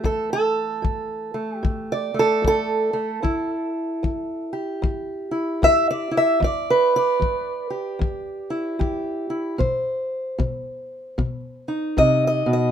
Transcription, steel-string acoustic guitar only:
0, 0, Header, 1, 2, 480
1, 0, Start_track
1, 0, Key_signature, 1, "minor"
1, 0, Tempo, 798935
1, 23, Time_signature, 4, 2, 24, 8
1, 3863, Tempo, 791557
1, 7674, End_track
2, 0, Start_track
2, 0, Title_t, "Steel-string acoustic guitar"
2, 0, Program_c, 0, 25
2, 0, Note_on_c, 0, 52, 48
2, 0, Note_on_c, 0, 57, 45
2, 21, Note_on_c, 0, 45, 70
2, 32, Note_on_c, 0, 69, 80
2, 188, Note_off_c, 0, 69, 0
2, 197, Note_on_c, 0, 69, 97
2, 468, Note_off_c, 0, 45, 0
2, 493, Note_on_c, 0, 45, 64
2, 799, Note_off_c, 0, 57, 0
2, 806, Note_on_c, 0, 57, 44
2, 936, Note_off_c, 0, 69, 0
2, 936, Note_on_c, 0, 67, 97
2, 945, Note_off_c, 0, 45, 0
2, 977, Note_on_c, 0, 45, 68
2, 1154, Note_on_c, 0, 74, 77
2, 1280, Note_off_c, 0, 57, 0
2, 1287, Note_on_c, 0, 57, 48
2, 1310, Note_off_c, 0, 67, 0
2, 1317, Note_on_c, 0, 69, 92
2, 1427, Note_off_c, 0, 45, 0
2, 1454, Note_on_c, 0, 45, 66
2, 1472, Note_off_c, 0, 69, 0
2, 1487, Note_on_c, 0, 69, 106
2, 1755, Note_off_c, 0, 57, 0
2, 1762, Note_on_c, 0, 57, 49
2, 1790, Note_off_c, 0, 74, 0
2, 1905, Note_off_c, 0, 45, 0
2, 1937, Note_on_c, 0, 40, 73
2, 1938, Note_off_c, 0, 57, 0
2, 1941, Note_on_c, 0, 64, 50
2, 1946, Note_off_c, 0, 52, 0
2, 2387, Note_off_c, 0, 40, 0
2, 2420, Note_on_c, 0, 40, 71
2, 2718, Note_off_c, 0, 69, 0
2, 2720, Note_on_c, 0, 67, 49
2, 2867, Note_off_c, 0, 40, 0
2, 2896, Note_on_c, 0, 40, 67
2, 3185, Note_off_c, 0, 64, 0
2, 3192, Note_on_c, 0, 64, 46
2, 3344, Note_off_c, 0, 40, 0
2, 3376, Note_on_c, 0, 40, 65
2, 3388, Note_on_c, 0, 76, 123
2, 3545, Note_off_c, 0, 76, 0
2, 3548, Note_on_c, 0, 74, 77
2, 3666, Note_off_c, 0, 64, 0
2, 3673, Note_on_c, 0, 64, 49
2, 3705, Note_off_c, 0, 74, 0
2, 3709, Note_on_c, 0, 76, 90
2, 3822, Note_off_c, 0, 40, 0
2, 3834, Note_off_c, 0, 64, 0
2, 3836, Note_off_c, 0, 67, 0
2, 3845, Note_on_c, 0, 40, 80
2, 3865, Note_off_c, 0, 76, 0
2, 3870, Note_on_c, 0, 74, 77
2, 4029, Note_on_c, 0, 71, 91
2, 4177, Note_off_c, 0, 74, 0
2, 4185, Note_on_c, 0, 74, 87
2, 4299, Note_off_c, 0, 40, 0
2, 4328, Note_on_c, 0, 40, 69
2, 4633, Note_off_c, 0, 71, 0
2, 4636, Note_on_c, 0, 67, 47
2, 4781, Note_off_c, 0, 40, 0
2, 4810, Note_on_c, 0, 40, 64
2, 5120, Note_on_c, 0, 64, 46
2, 5262, Note_off_c, 0, 40, 0
2, 5290, Note_off_c, 0, 67, 0
2, 5295, Note_on_c, 0, 40, 70
2, 5298, Note_on_c, 0, 67, 41
2, 5596, Note_off_c, 0, 64, 0
2, 5603, Note_on_c, 0, 64, 44
2, 5744, Note_off_c, 0, 40, 0
2, 5759, Note_off_c, 0, 67, 0
2, 5760, Note_off_c, 0, 64, 0
2, 5775, Note_on_c, 0, 47, 76
2, 5777, Note_off_c, 0, 74, 0
2, 5780, Note_on_c, 0, 72, 46
2, 6223, Note_off_c, 0, 47, 0
2, 6261, Note_on_c, 0, 47, 72
2, 6706, Note_off_c, 0, 47, 0
2, 6742, Note_on_c, 0, 47, 68
2, 7047, Note_on_c, 0, 63, 45
2, 7186, Note_off_c, 0, 47, 0
2, 7219, Note_off_c, 0, 72, 0
2, 7221, Note_on_c, 0, 48, 59
2, 7230, Note_on_c, 0, 75, 108
2, 7385, Note_off_c, 0, 75, 0
2, 7407, Note_on_c, 0, 75, 84
2, 7518, Note_off_c, 0, 48, 0
2, 7520, Note_on_c, 0, 47, 70
2, 7553, Note_off_c, 0, 75, 0
2, 7563, Note_on_c, 0, 75, 84
2, 7674, Note_off_c, 0, 47, 0
2, 7674, Note_off_c, 0, 63, 0
2, 7674, Note_off_c, 0, 75, 0
2, 7674, End_track
0, 0, End_of_file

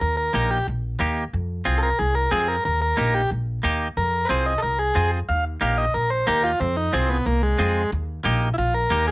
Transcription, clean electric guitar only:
0, 0, Header, 1, 2, 480
1, 0, Start_track
1, 0, Tempo, 329489
1, 19, Time_signature, 4, 2, 24, 8
1, 13277, End_track
2, 0, Start_track
2, 0, Title_t, "Clean electric guitar"
2, 0, Program_c, 0, 27
2, 493, Note_on_c, 0, 58, 65
2, 507, Note_on_c, 0, 67, 75
2, 508, Note_on_c, 0, 63, 61
2, 834, Note_off_c, 0, 58, 0
2, 836, Note_off_c, 0, 63, 0
2, 839, Note_off_c, 0, 67, 0
2, 1454, Note_on_c, 0, 58, 82
2, 1465, Note_on_c, 0, 63, 62
2, 1465, Note_on_c, 0, 67, 90
2, 1795, Note_off_c, 0, 58, 0
2, 1796, Note_off_c, 0, 63, 0
2, 1799, Note_off_c, 0, 67, 0
2, 2408, Note_on_c, 0, 60, 86
2, 2411, Note_on_c, 0, 65, 81
2, 2422, Note_on_c, 0, 68, 81
2, 2751, Note_off_c, 0, 60, 0
2, 2754, Note_off_c, 0, 65, 0
2, 2755, Note_off_c, 0, 68, 0
2, 3372, Note_on_c, 0, 60, 72
2, 3386, Note_on_c, 0, 65, 56
2, 3386, Note_on_c, 0, 68, 82
2, 3715, Note_off_c, 0, 60, 0
2, 3717, Note_off_c, 0, 65, 0
2, 3720, Note_off_c, 0, 68, 0
2, 4328, Note_on_c, 0, 58, 75
2, 4337, Note_on_c, 0, 63, 73
2, 4348, Note_on_c, 0, 67, 69
2, 4671, Note_off_c, 0, 58, 0
2, 4676, Note_off_c, 0, 63, 0
2, 4679, Note_off_c, 0, 67, 0
2, 5294, Note_on_c, 0, 58, 81
2, 5307, Note_on_c, 0, 63, 69
2, 5310, Note_on_c, 0, 67, 95
2, 5635, Note_off_c, 0, 58, 0
2, 5638, Note_off_c, 0, 63, 0
2, 5642, Note_off_c, 0, 67, 0
2, 6251, Note_on_c, 0, 60, 73
2, 6267, Note_on_c, 0, 65, 53
2, 6269, Note_on_c, 0, 68, 76
2, 6595, Note_off_c, 0, 60, 0
2, 6597, Note_off_c, 0, 65, 0
2, 6601, Note_off_c, 0, 68, 0
2, 7213, Note_on_c, 0, 60, 70
2, 7218, Note_on_c, 0, 65, 64
2, 7228, Note_on_c, 0, 68, 61
2, 7553, Note_off_c, 0, 60, 0
2, 7557, Note_off_c, 0, 65, 0
2, 7558, Note_off_c, 0, 68, 0
2, 8169, Note_on_c, 0, 58, 81
2, 8174, Note_on_c, 0, 63, 62
2, 8183, Note_on_c, 0, 67, 76
2, 8511, Note_off_c, 0, 58, 0
2, 8514, Note_off_c, 0, 63, 0
2, 8515, Note_off_c, 0, 67, 0
2, 9133, Note_on_c, 0, 58, 75
2, 9146, Note_on_c, 0, 63, 62
2, 9146, Note_on_c, 0, 67, 86
2, 9474, Note_off_c, 0, 58, 0
2, 9476, Note_off_c, 0, 63, 0
2, 9479, Note_off_c, 0, 67, 0
2, 10092, Note_on_c, 0, 60, 73
2, 10098, Note_on_c, 0, 65, 70
2, 10109, Note_on_c, 0, 68, 78
2, 10431, Note_off_c, 0, 60, 0
2, 10435, Note_off_c, 0, 65, 0
2, 10437, Note_off_c, 0, 68, 0
2, 11051, Note_on_c, 0, 60, 74
2, 11057, Note_on_c, 0, 65, 63
2, 11068, Note_on_c, 0, 68, 58
2, 11390, Note_off_c, 0, 60, 0
2, 11394, Note_off_c, 0, 65, 0
2, 11397, Note_off_c, 0, 68, 0
2, 12011, Note_on_c, 0, 58, 82
2, 12022, Note_on_c, 0, 63, 77
2, 12024, Note_on_c, 0, 67, 102
2, 12351, Note_off_c, 0, 58, 0
2, 12354, Note_off_c, 0, 63, 0
2, 12356, Note_off_c, 0, 67, 0
2, 12971, Note_on_c, 0, 58, 74
2, 12984, Note_on_c, 0, 63, 54
2, 12988, Note_on_c, 0, 67, 82
2, 13277, Note_off_c, 0, 58, 0
2, 13277, Note_off_c, 0, 63, 0
2, 13277, Note_off_c, 0, 67, 0
2, 13277, End_track
0, 0, End_of_file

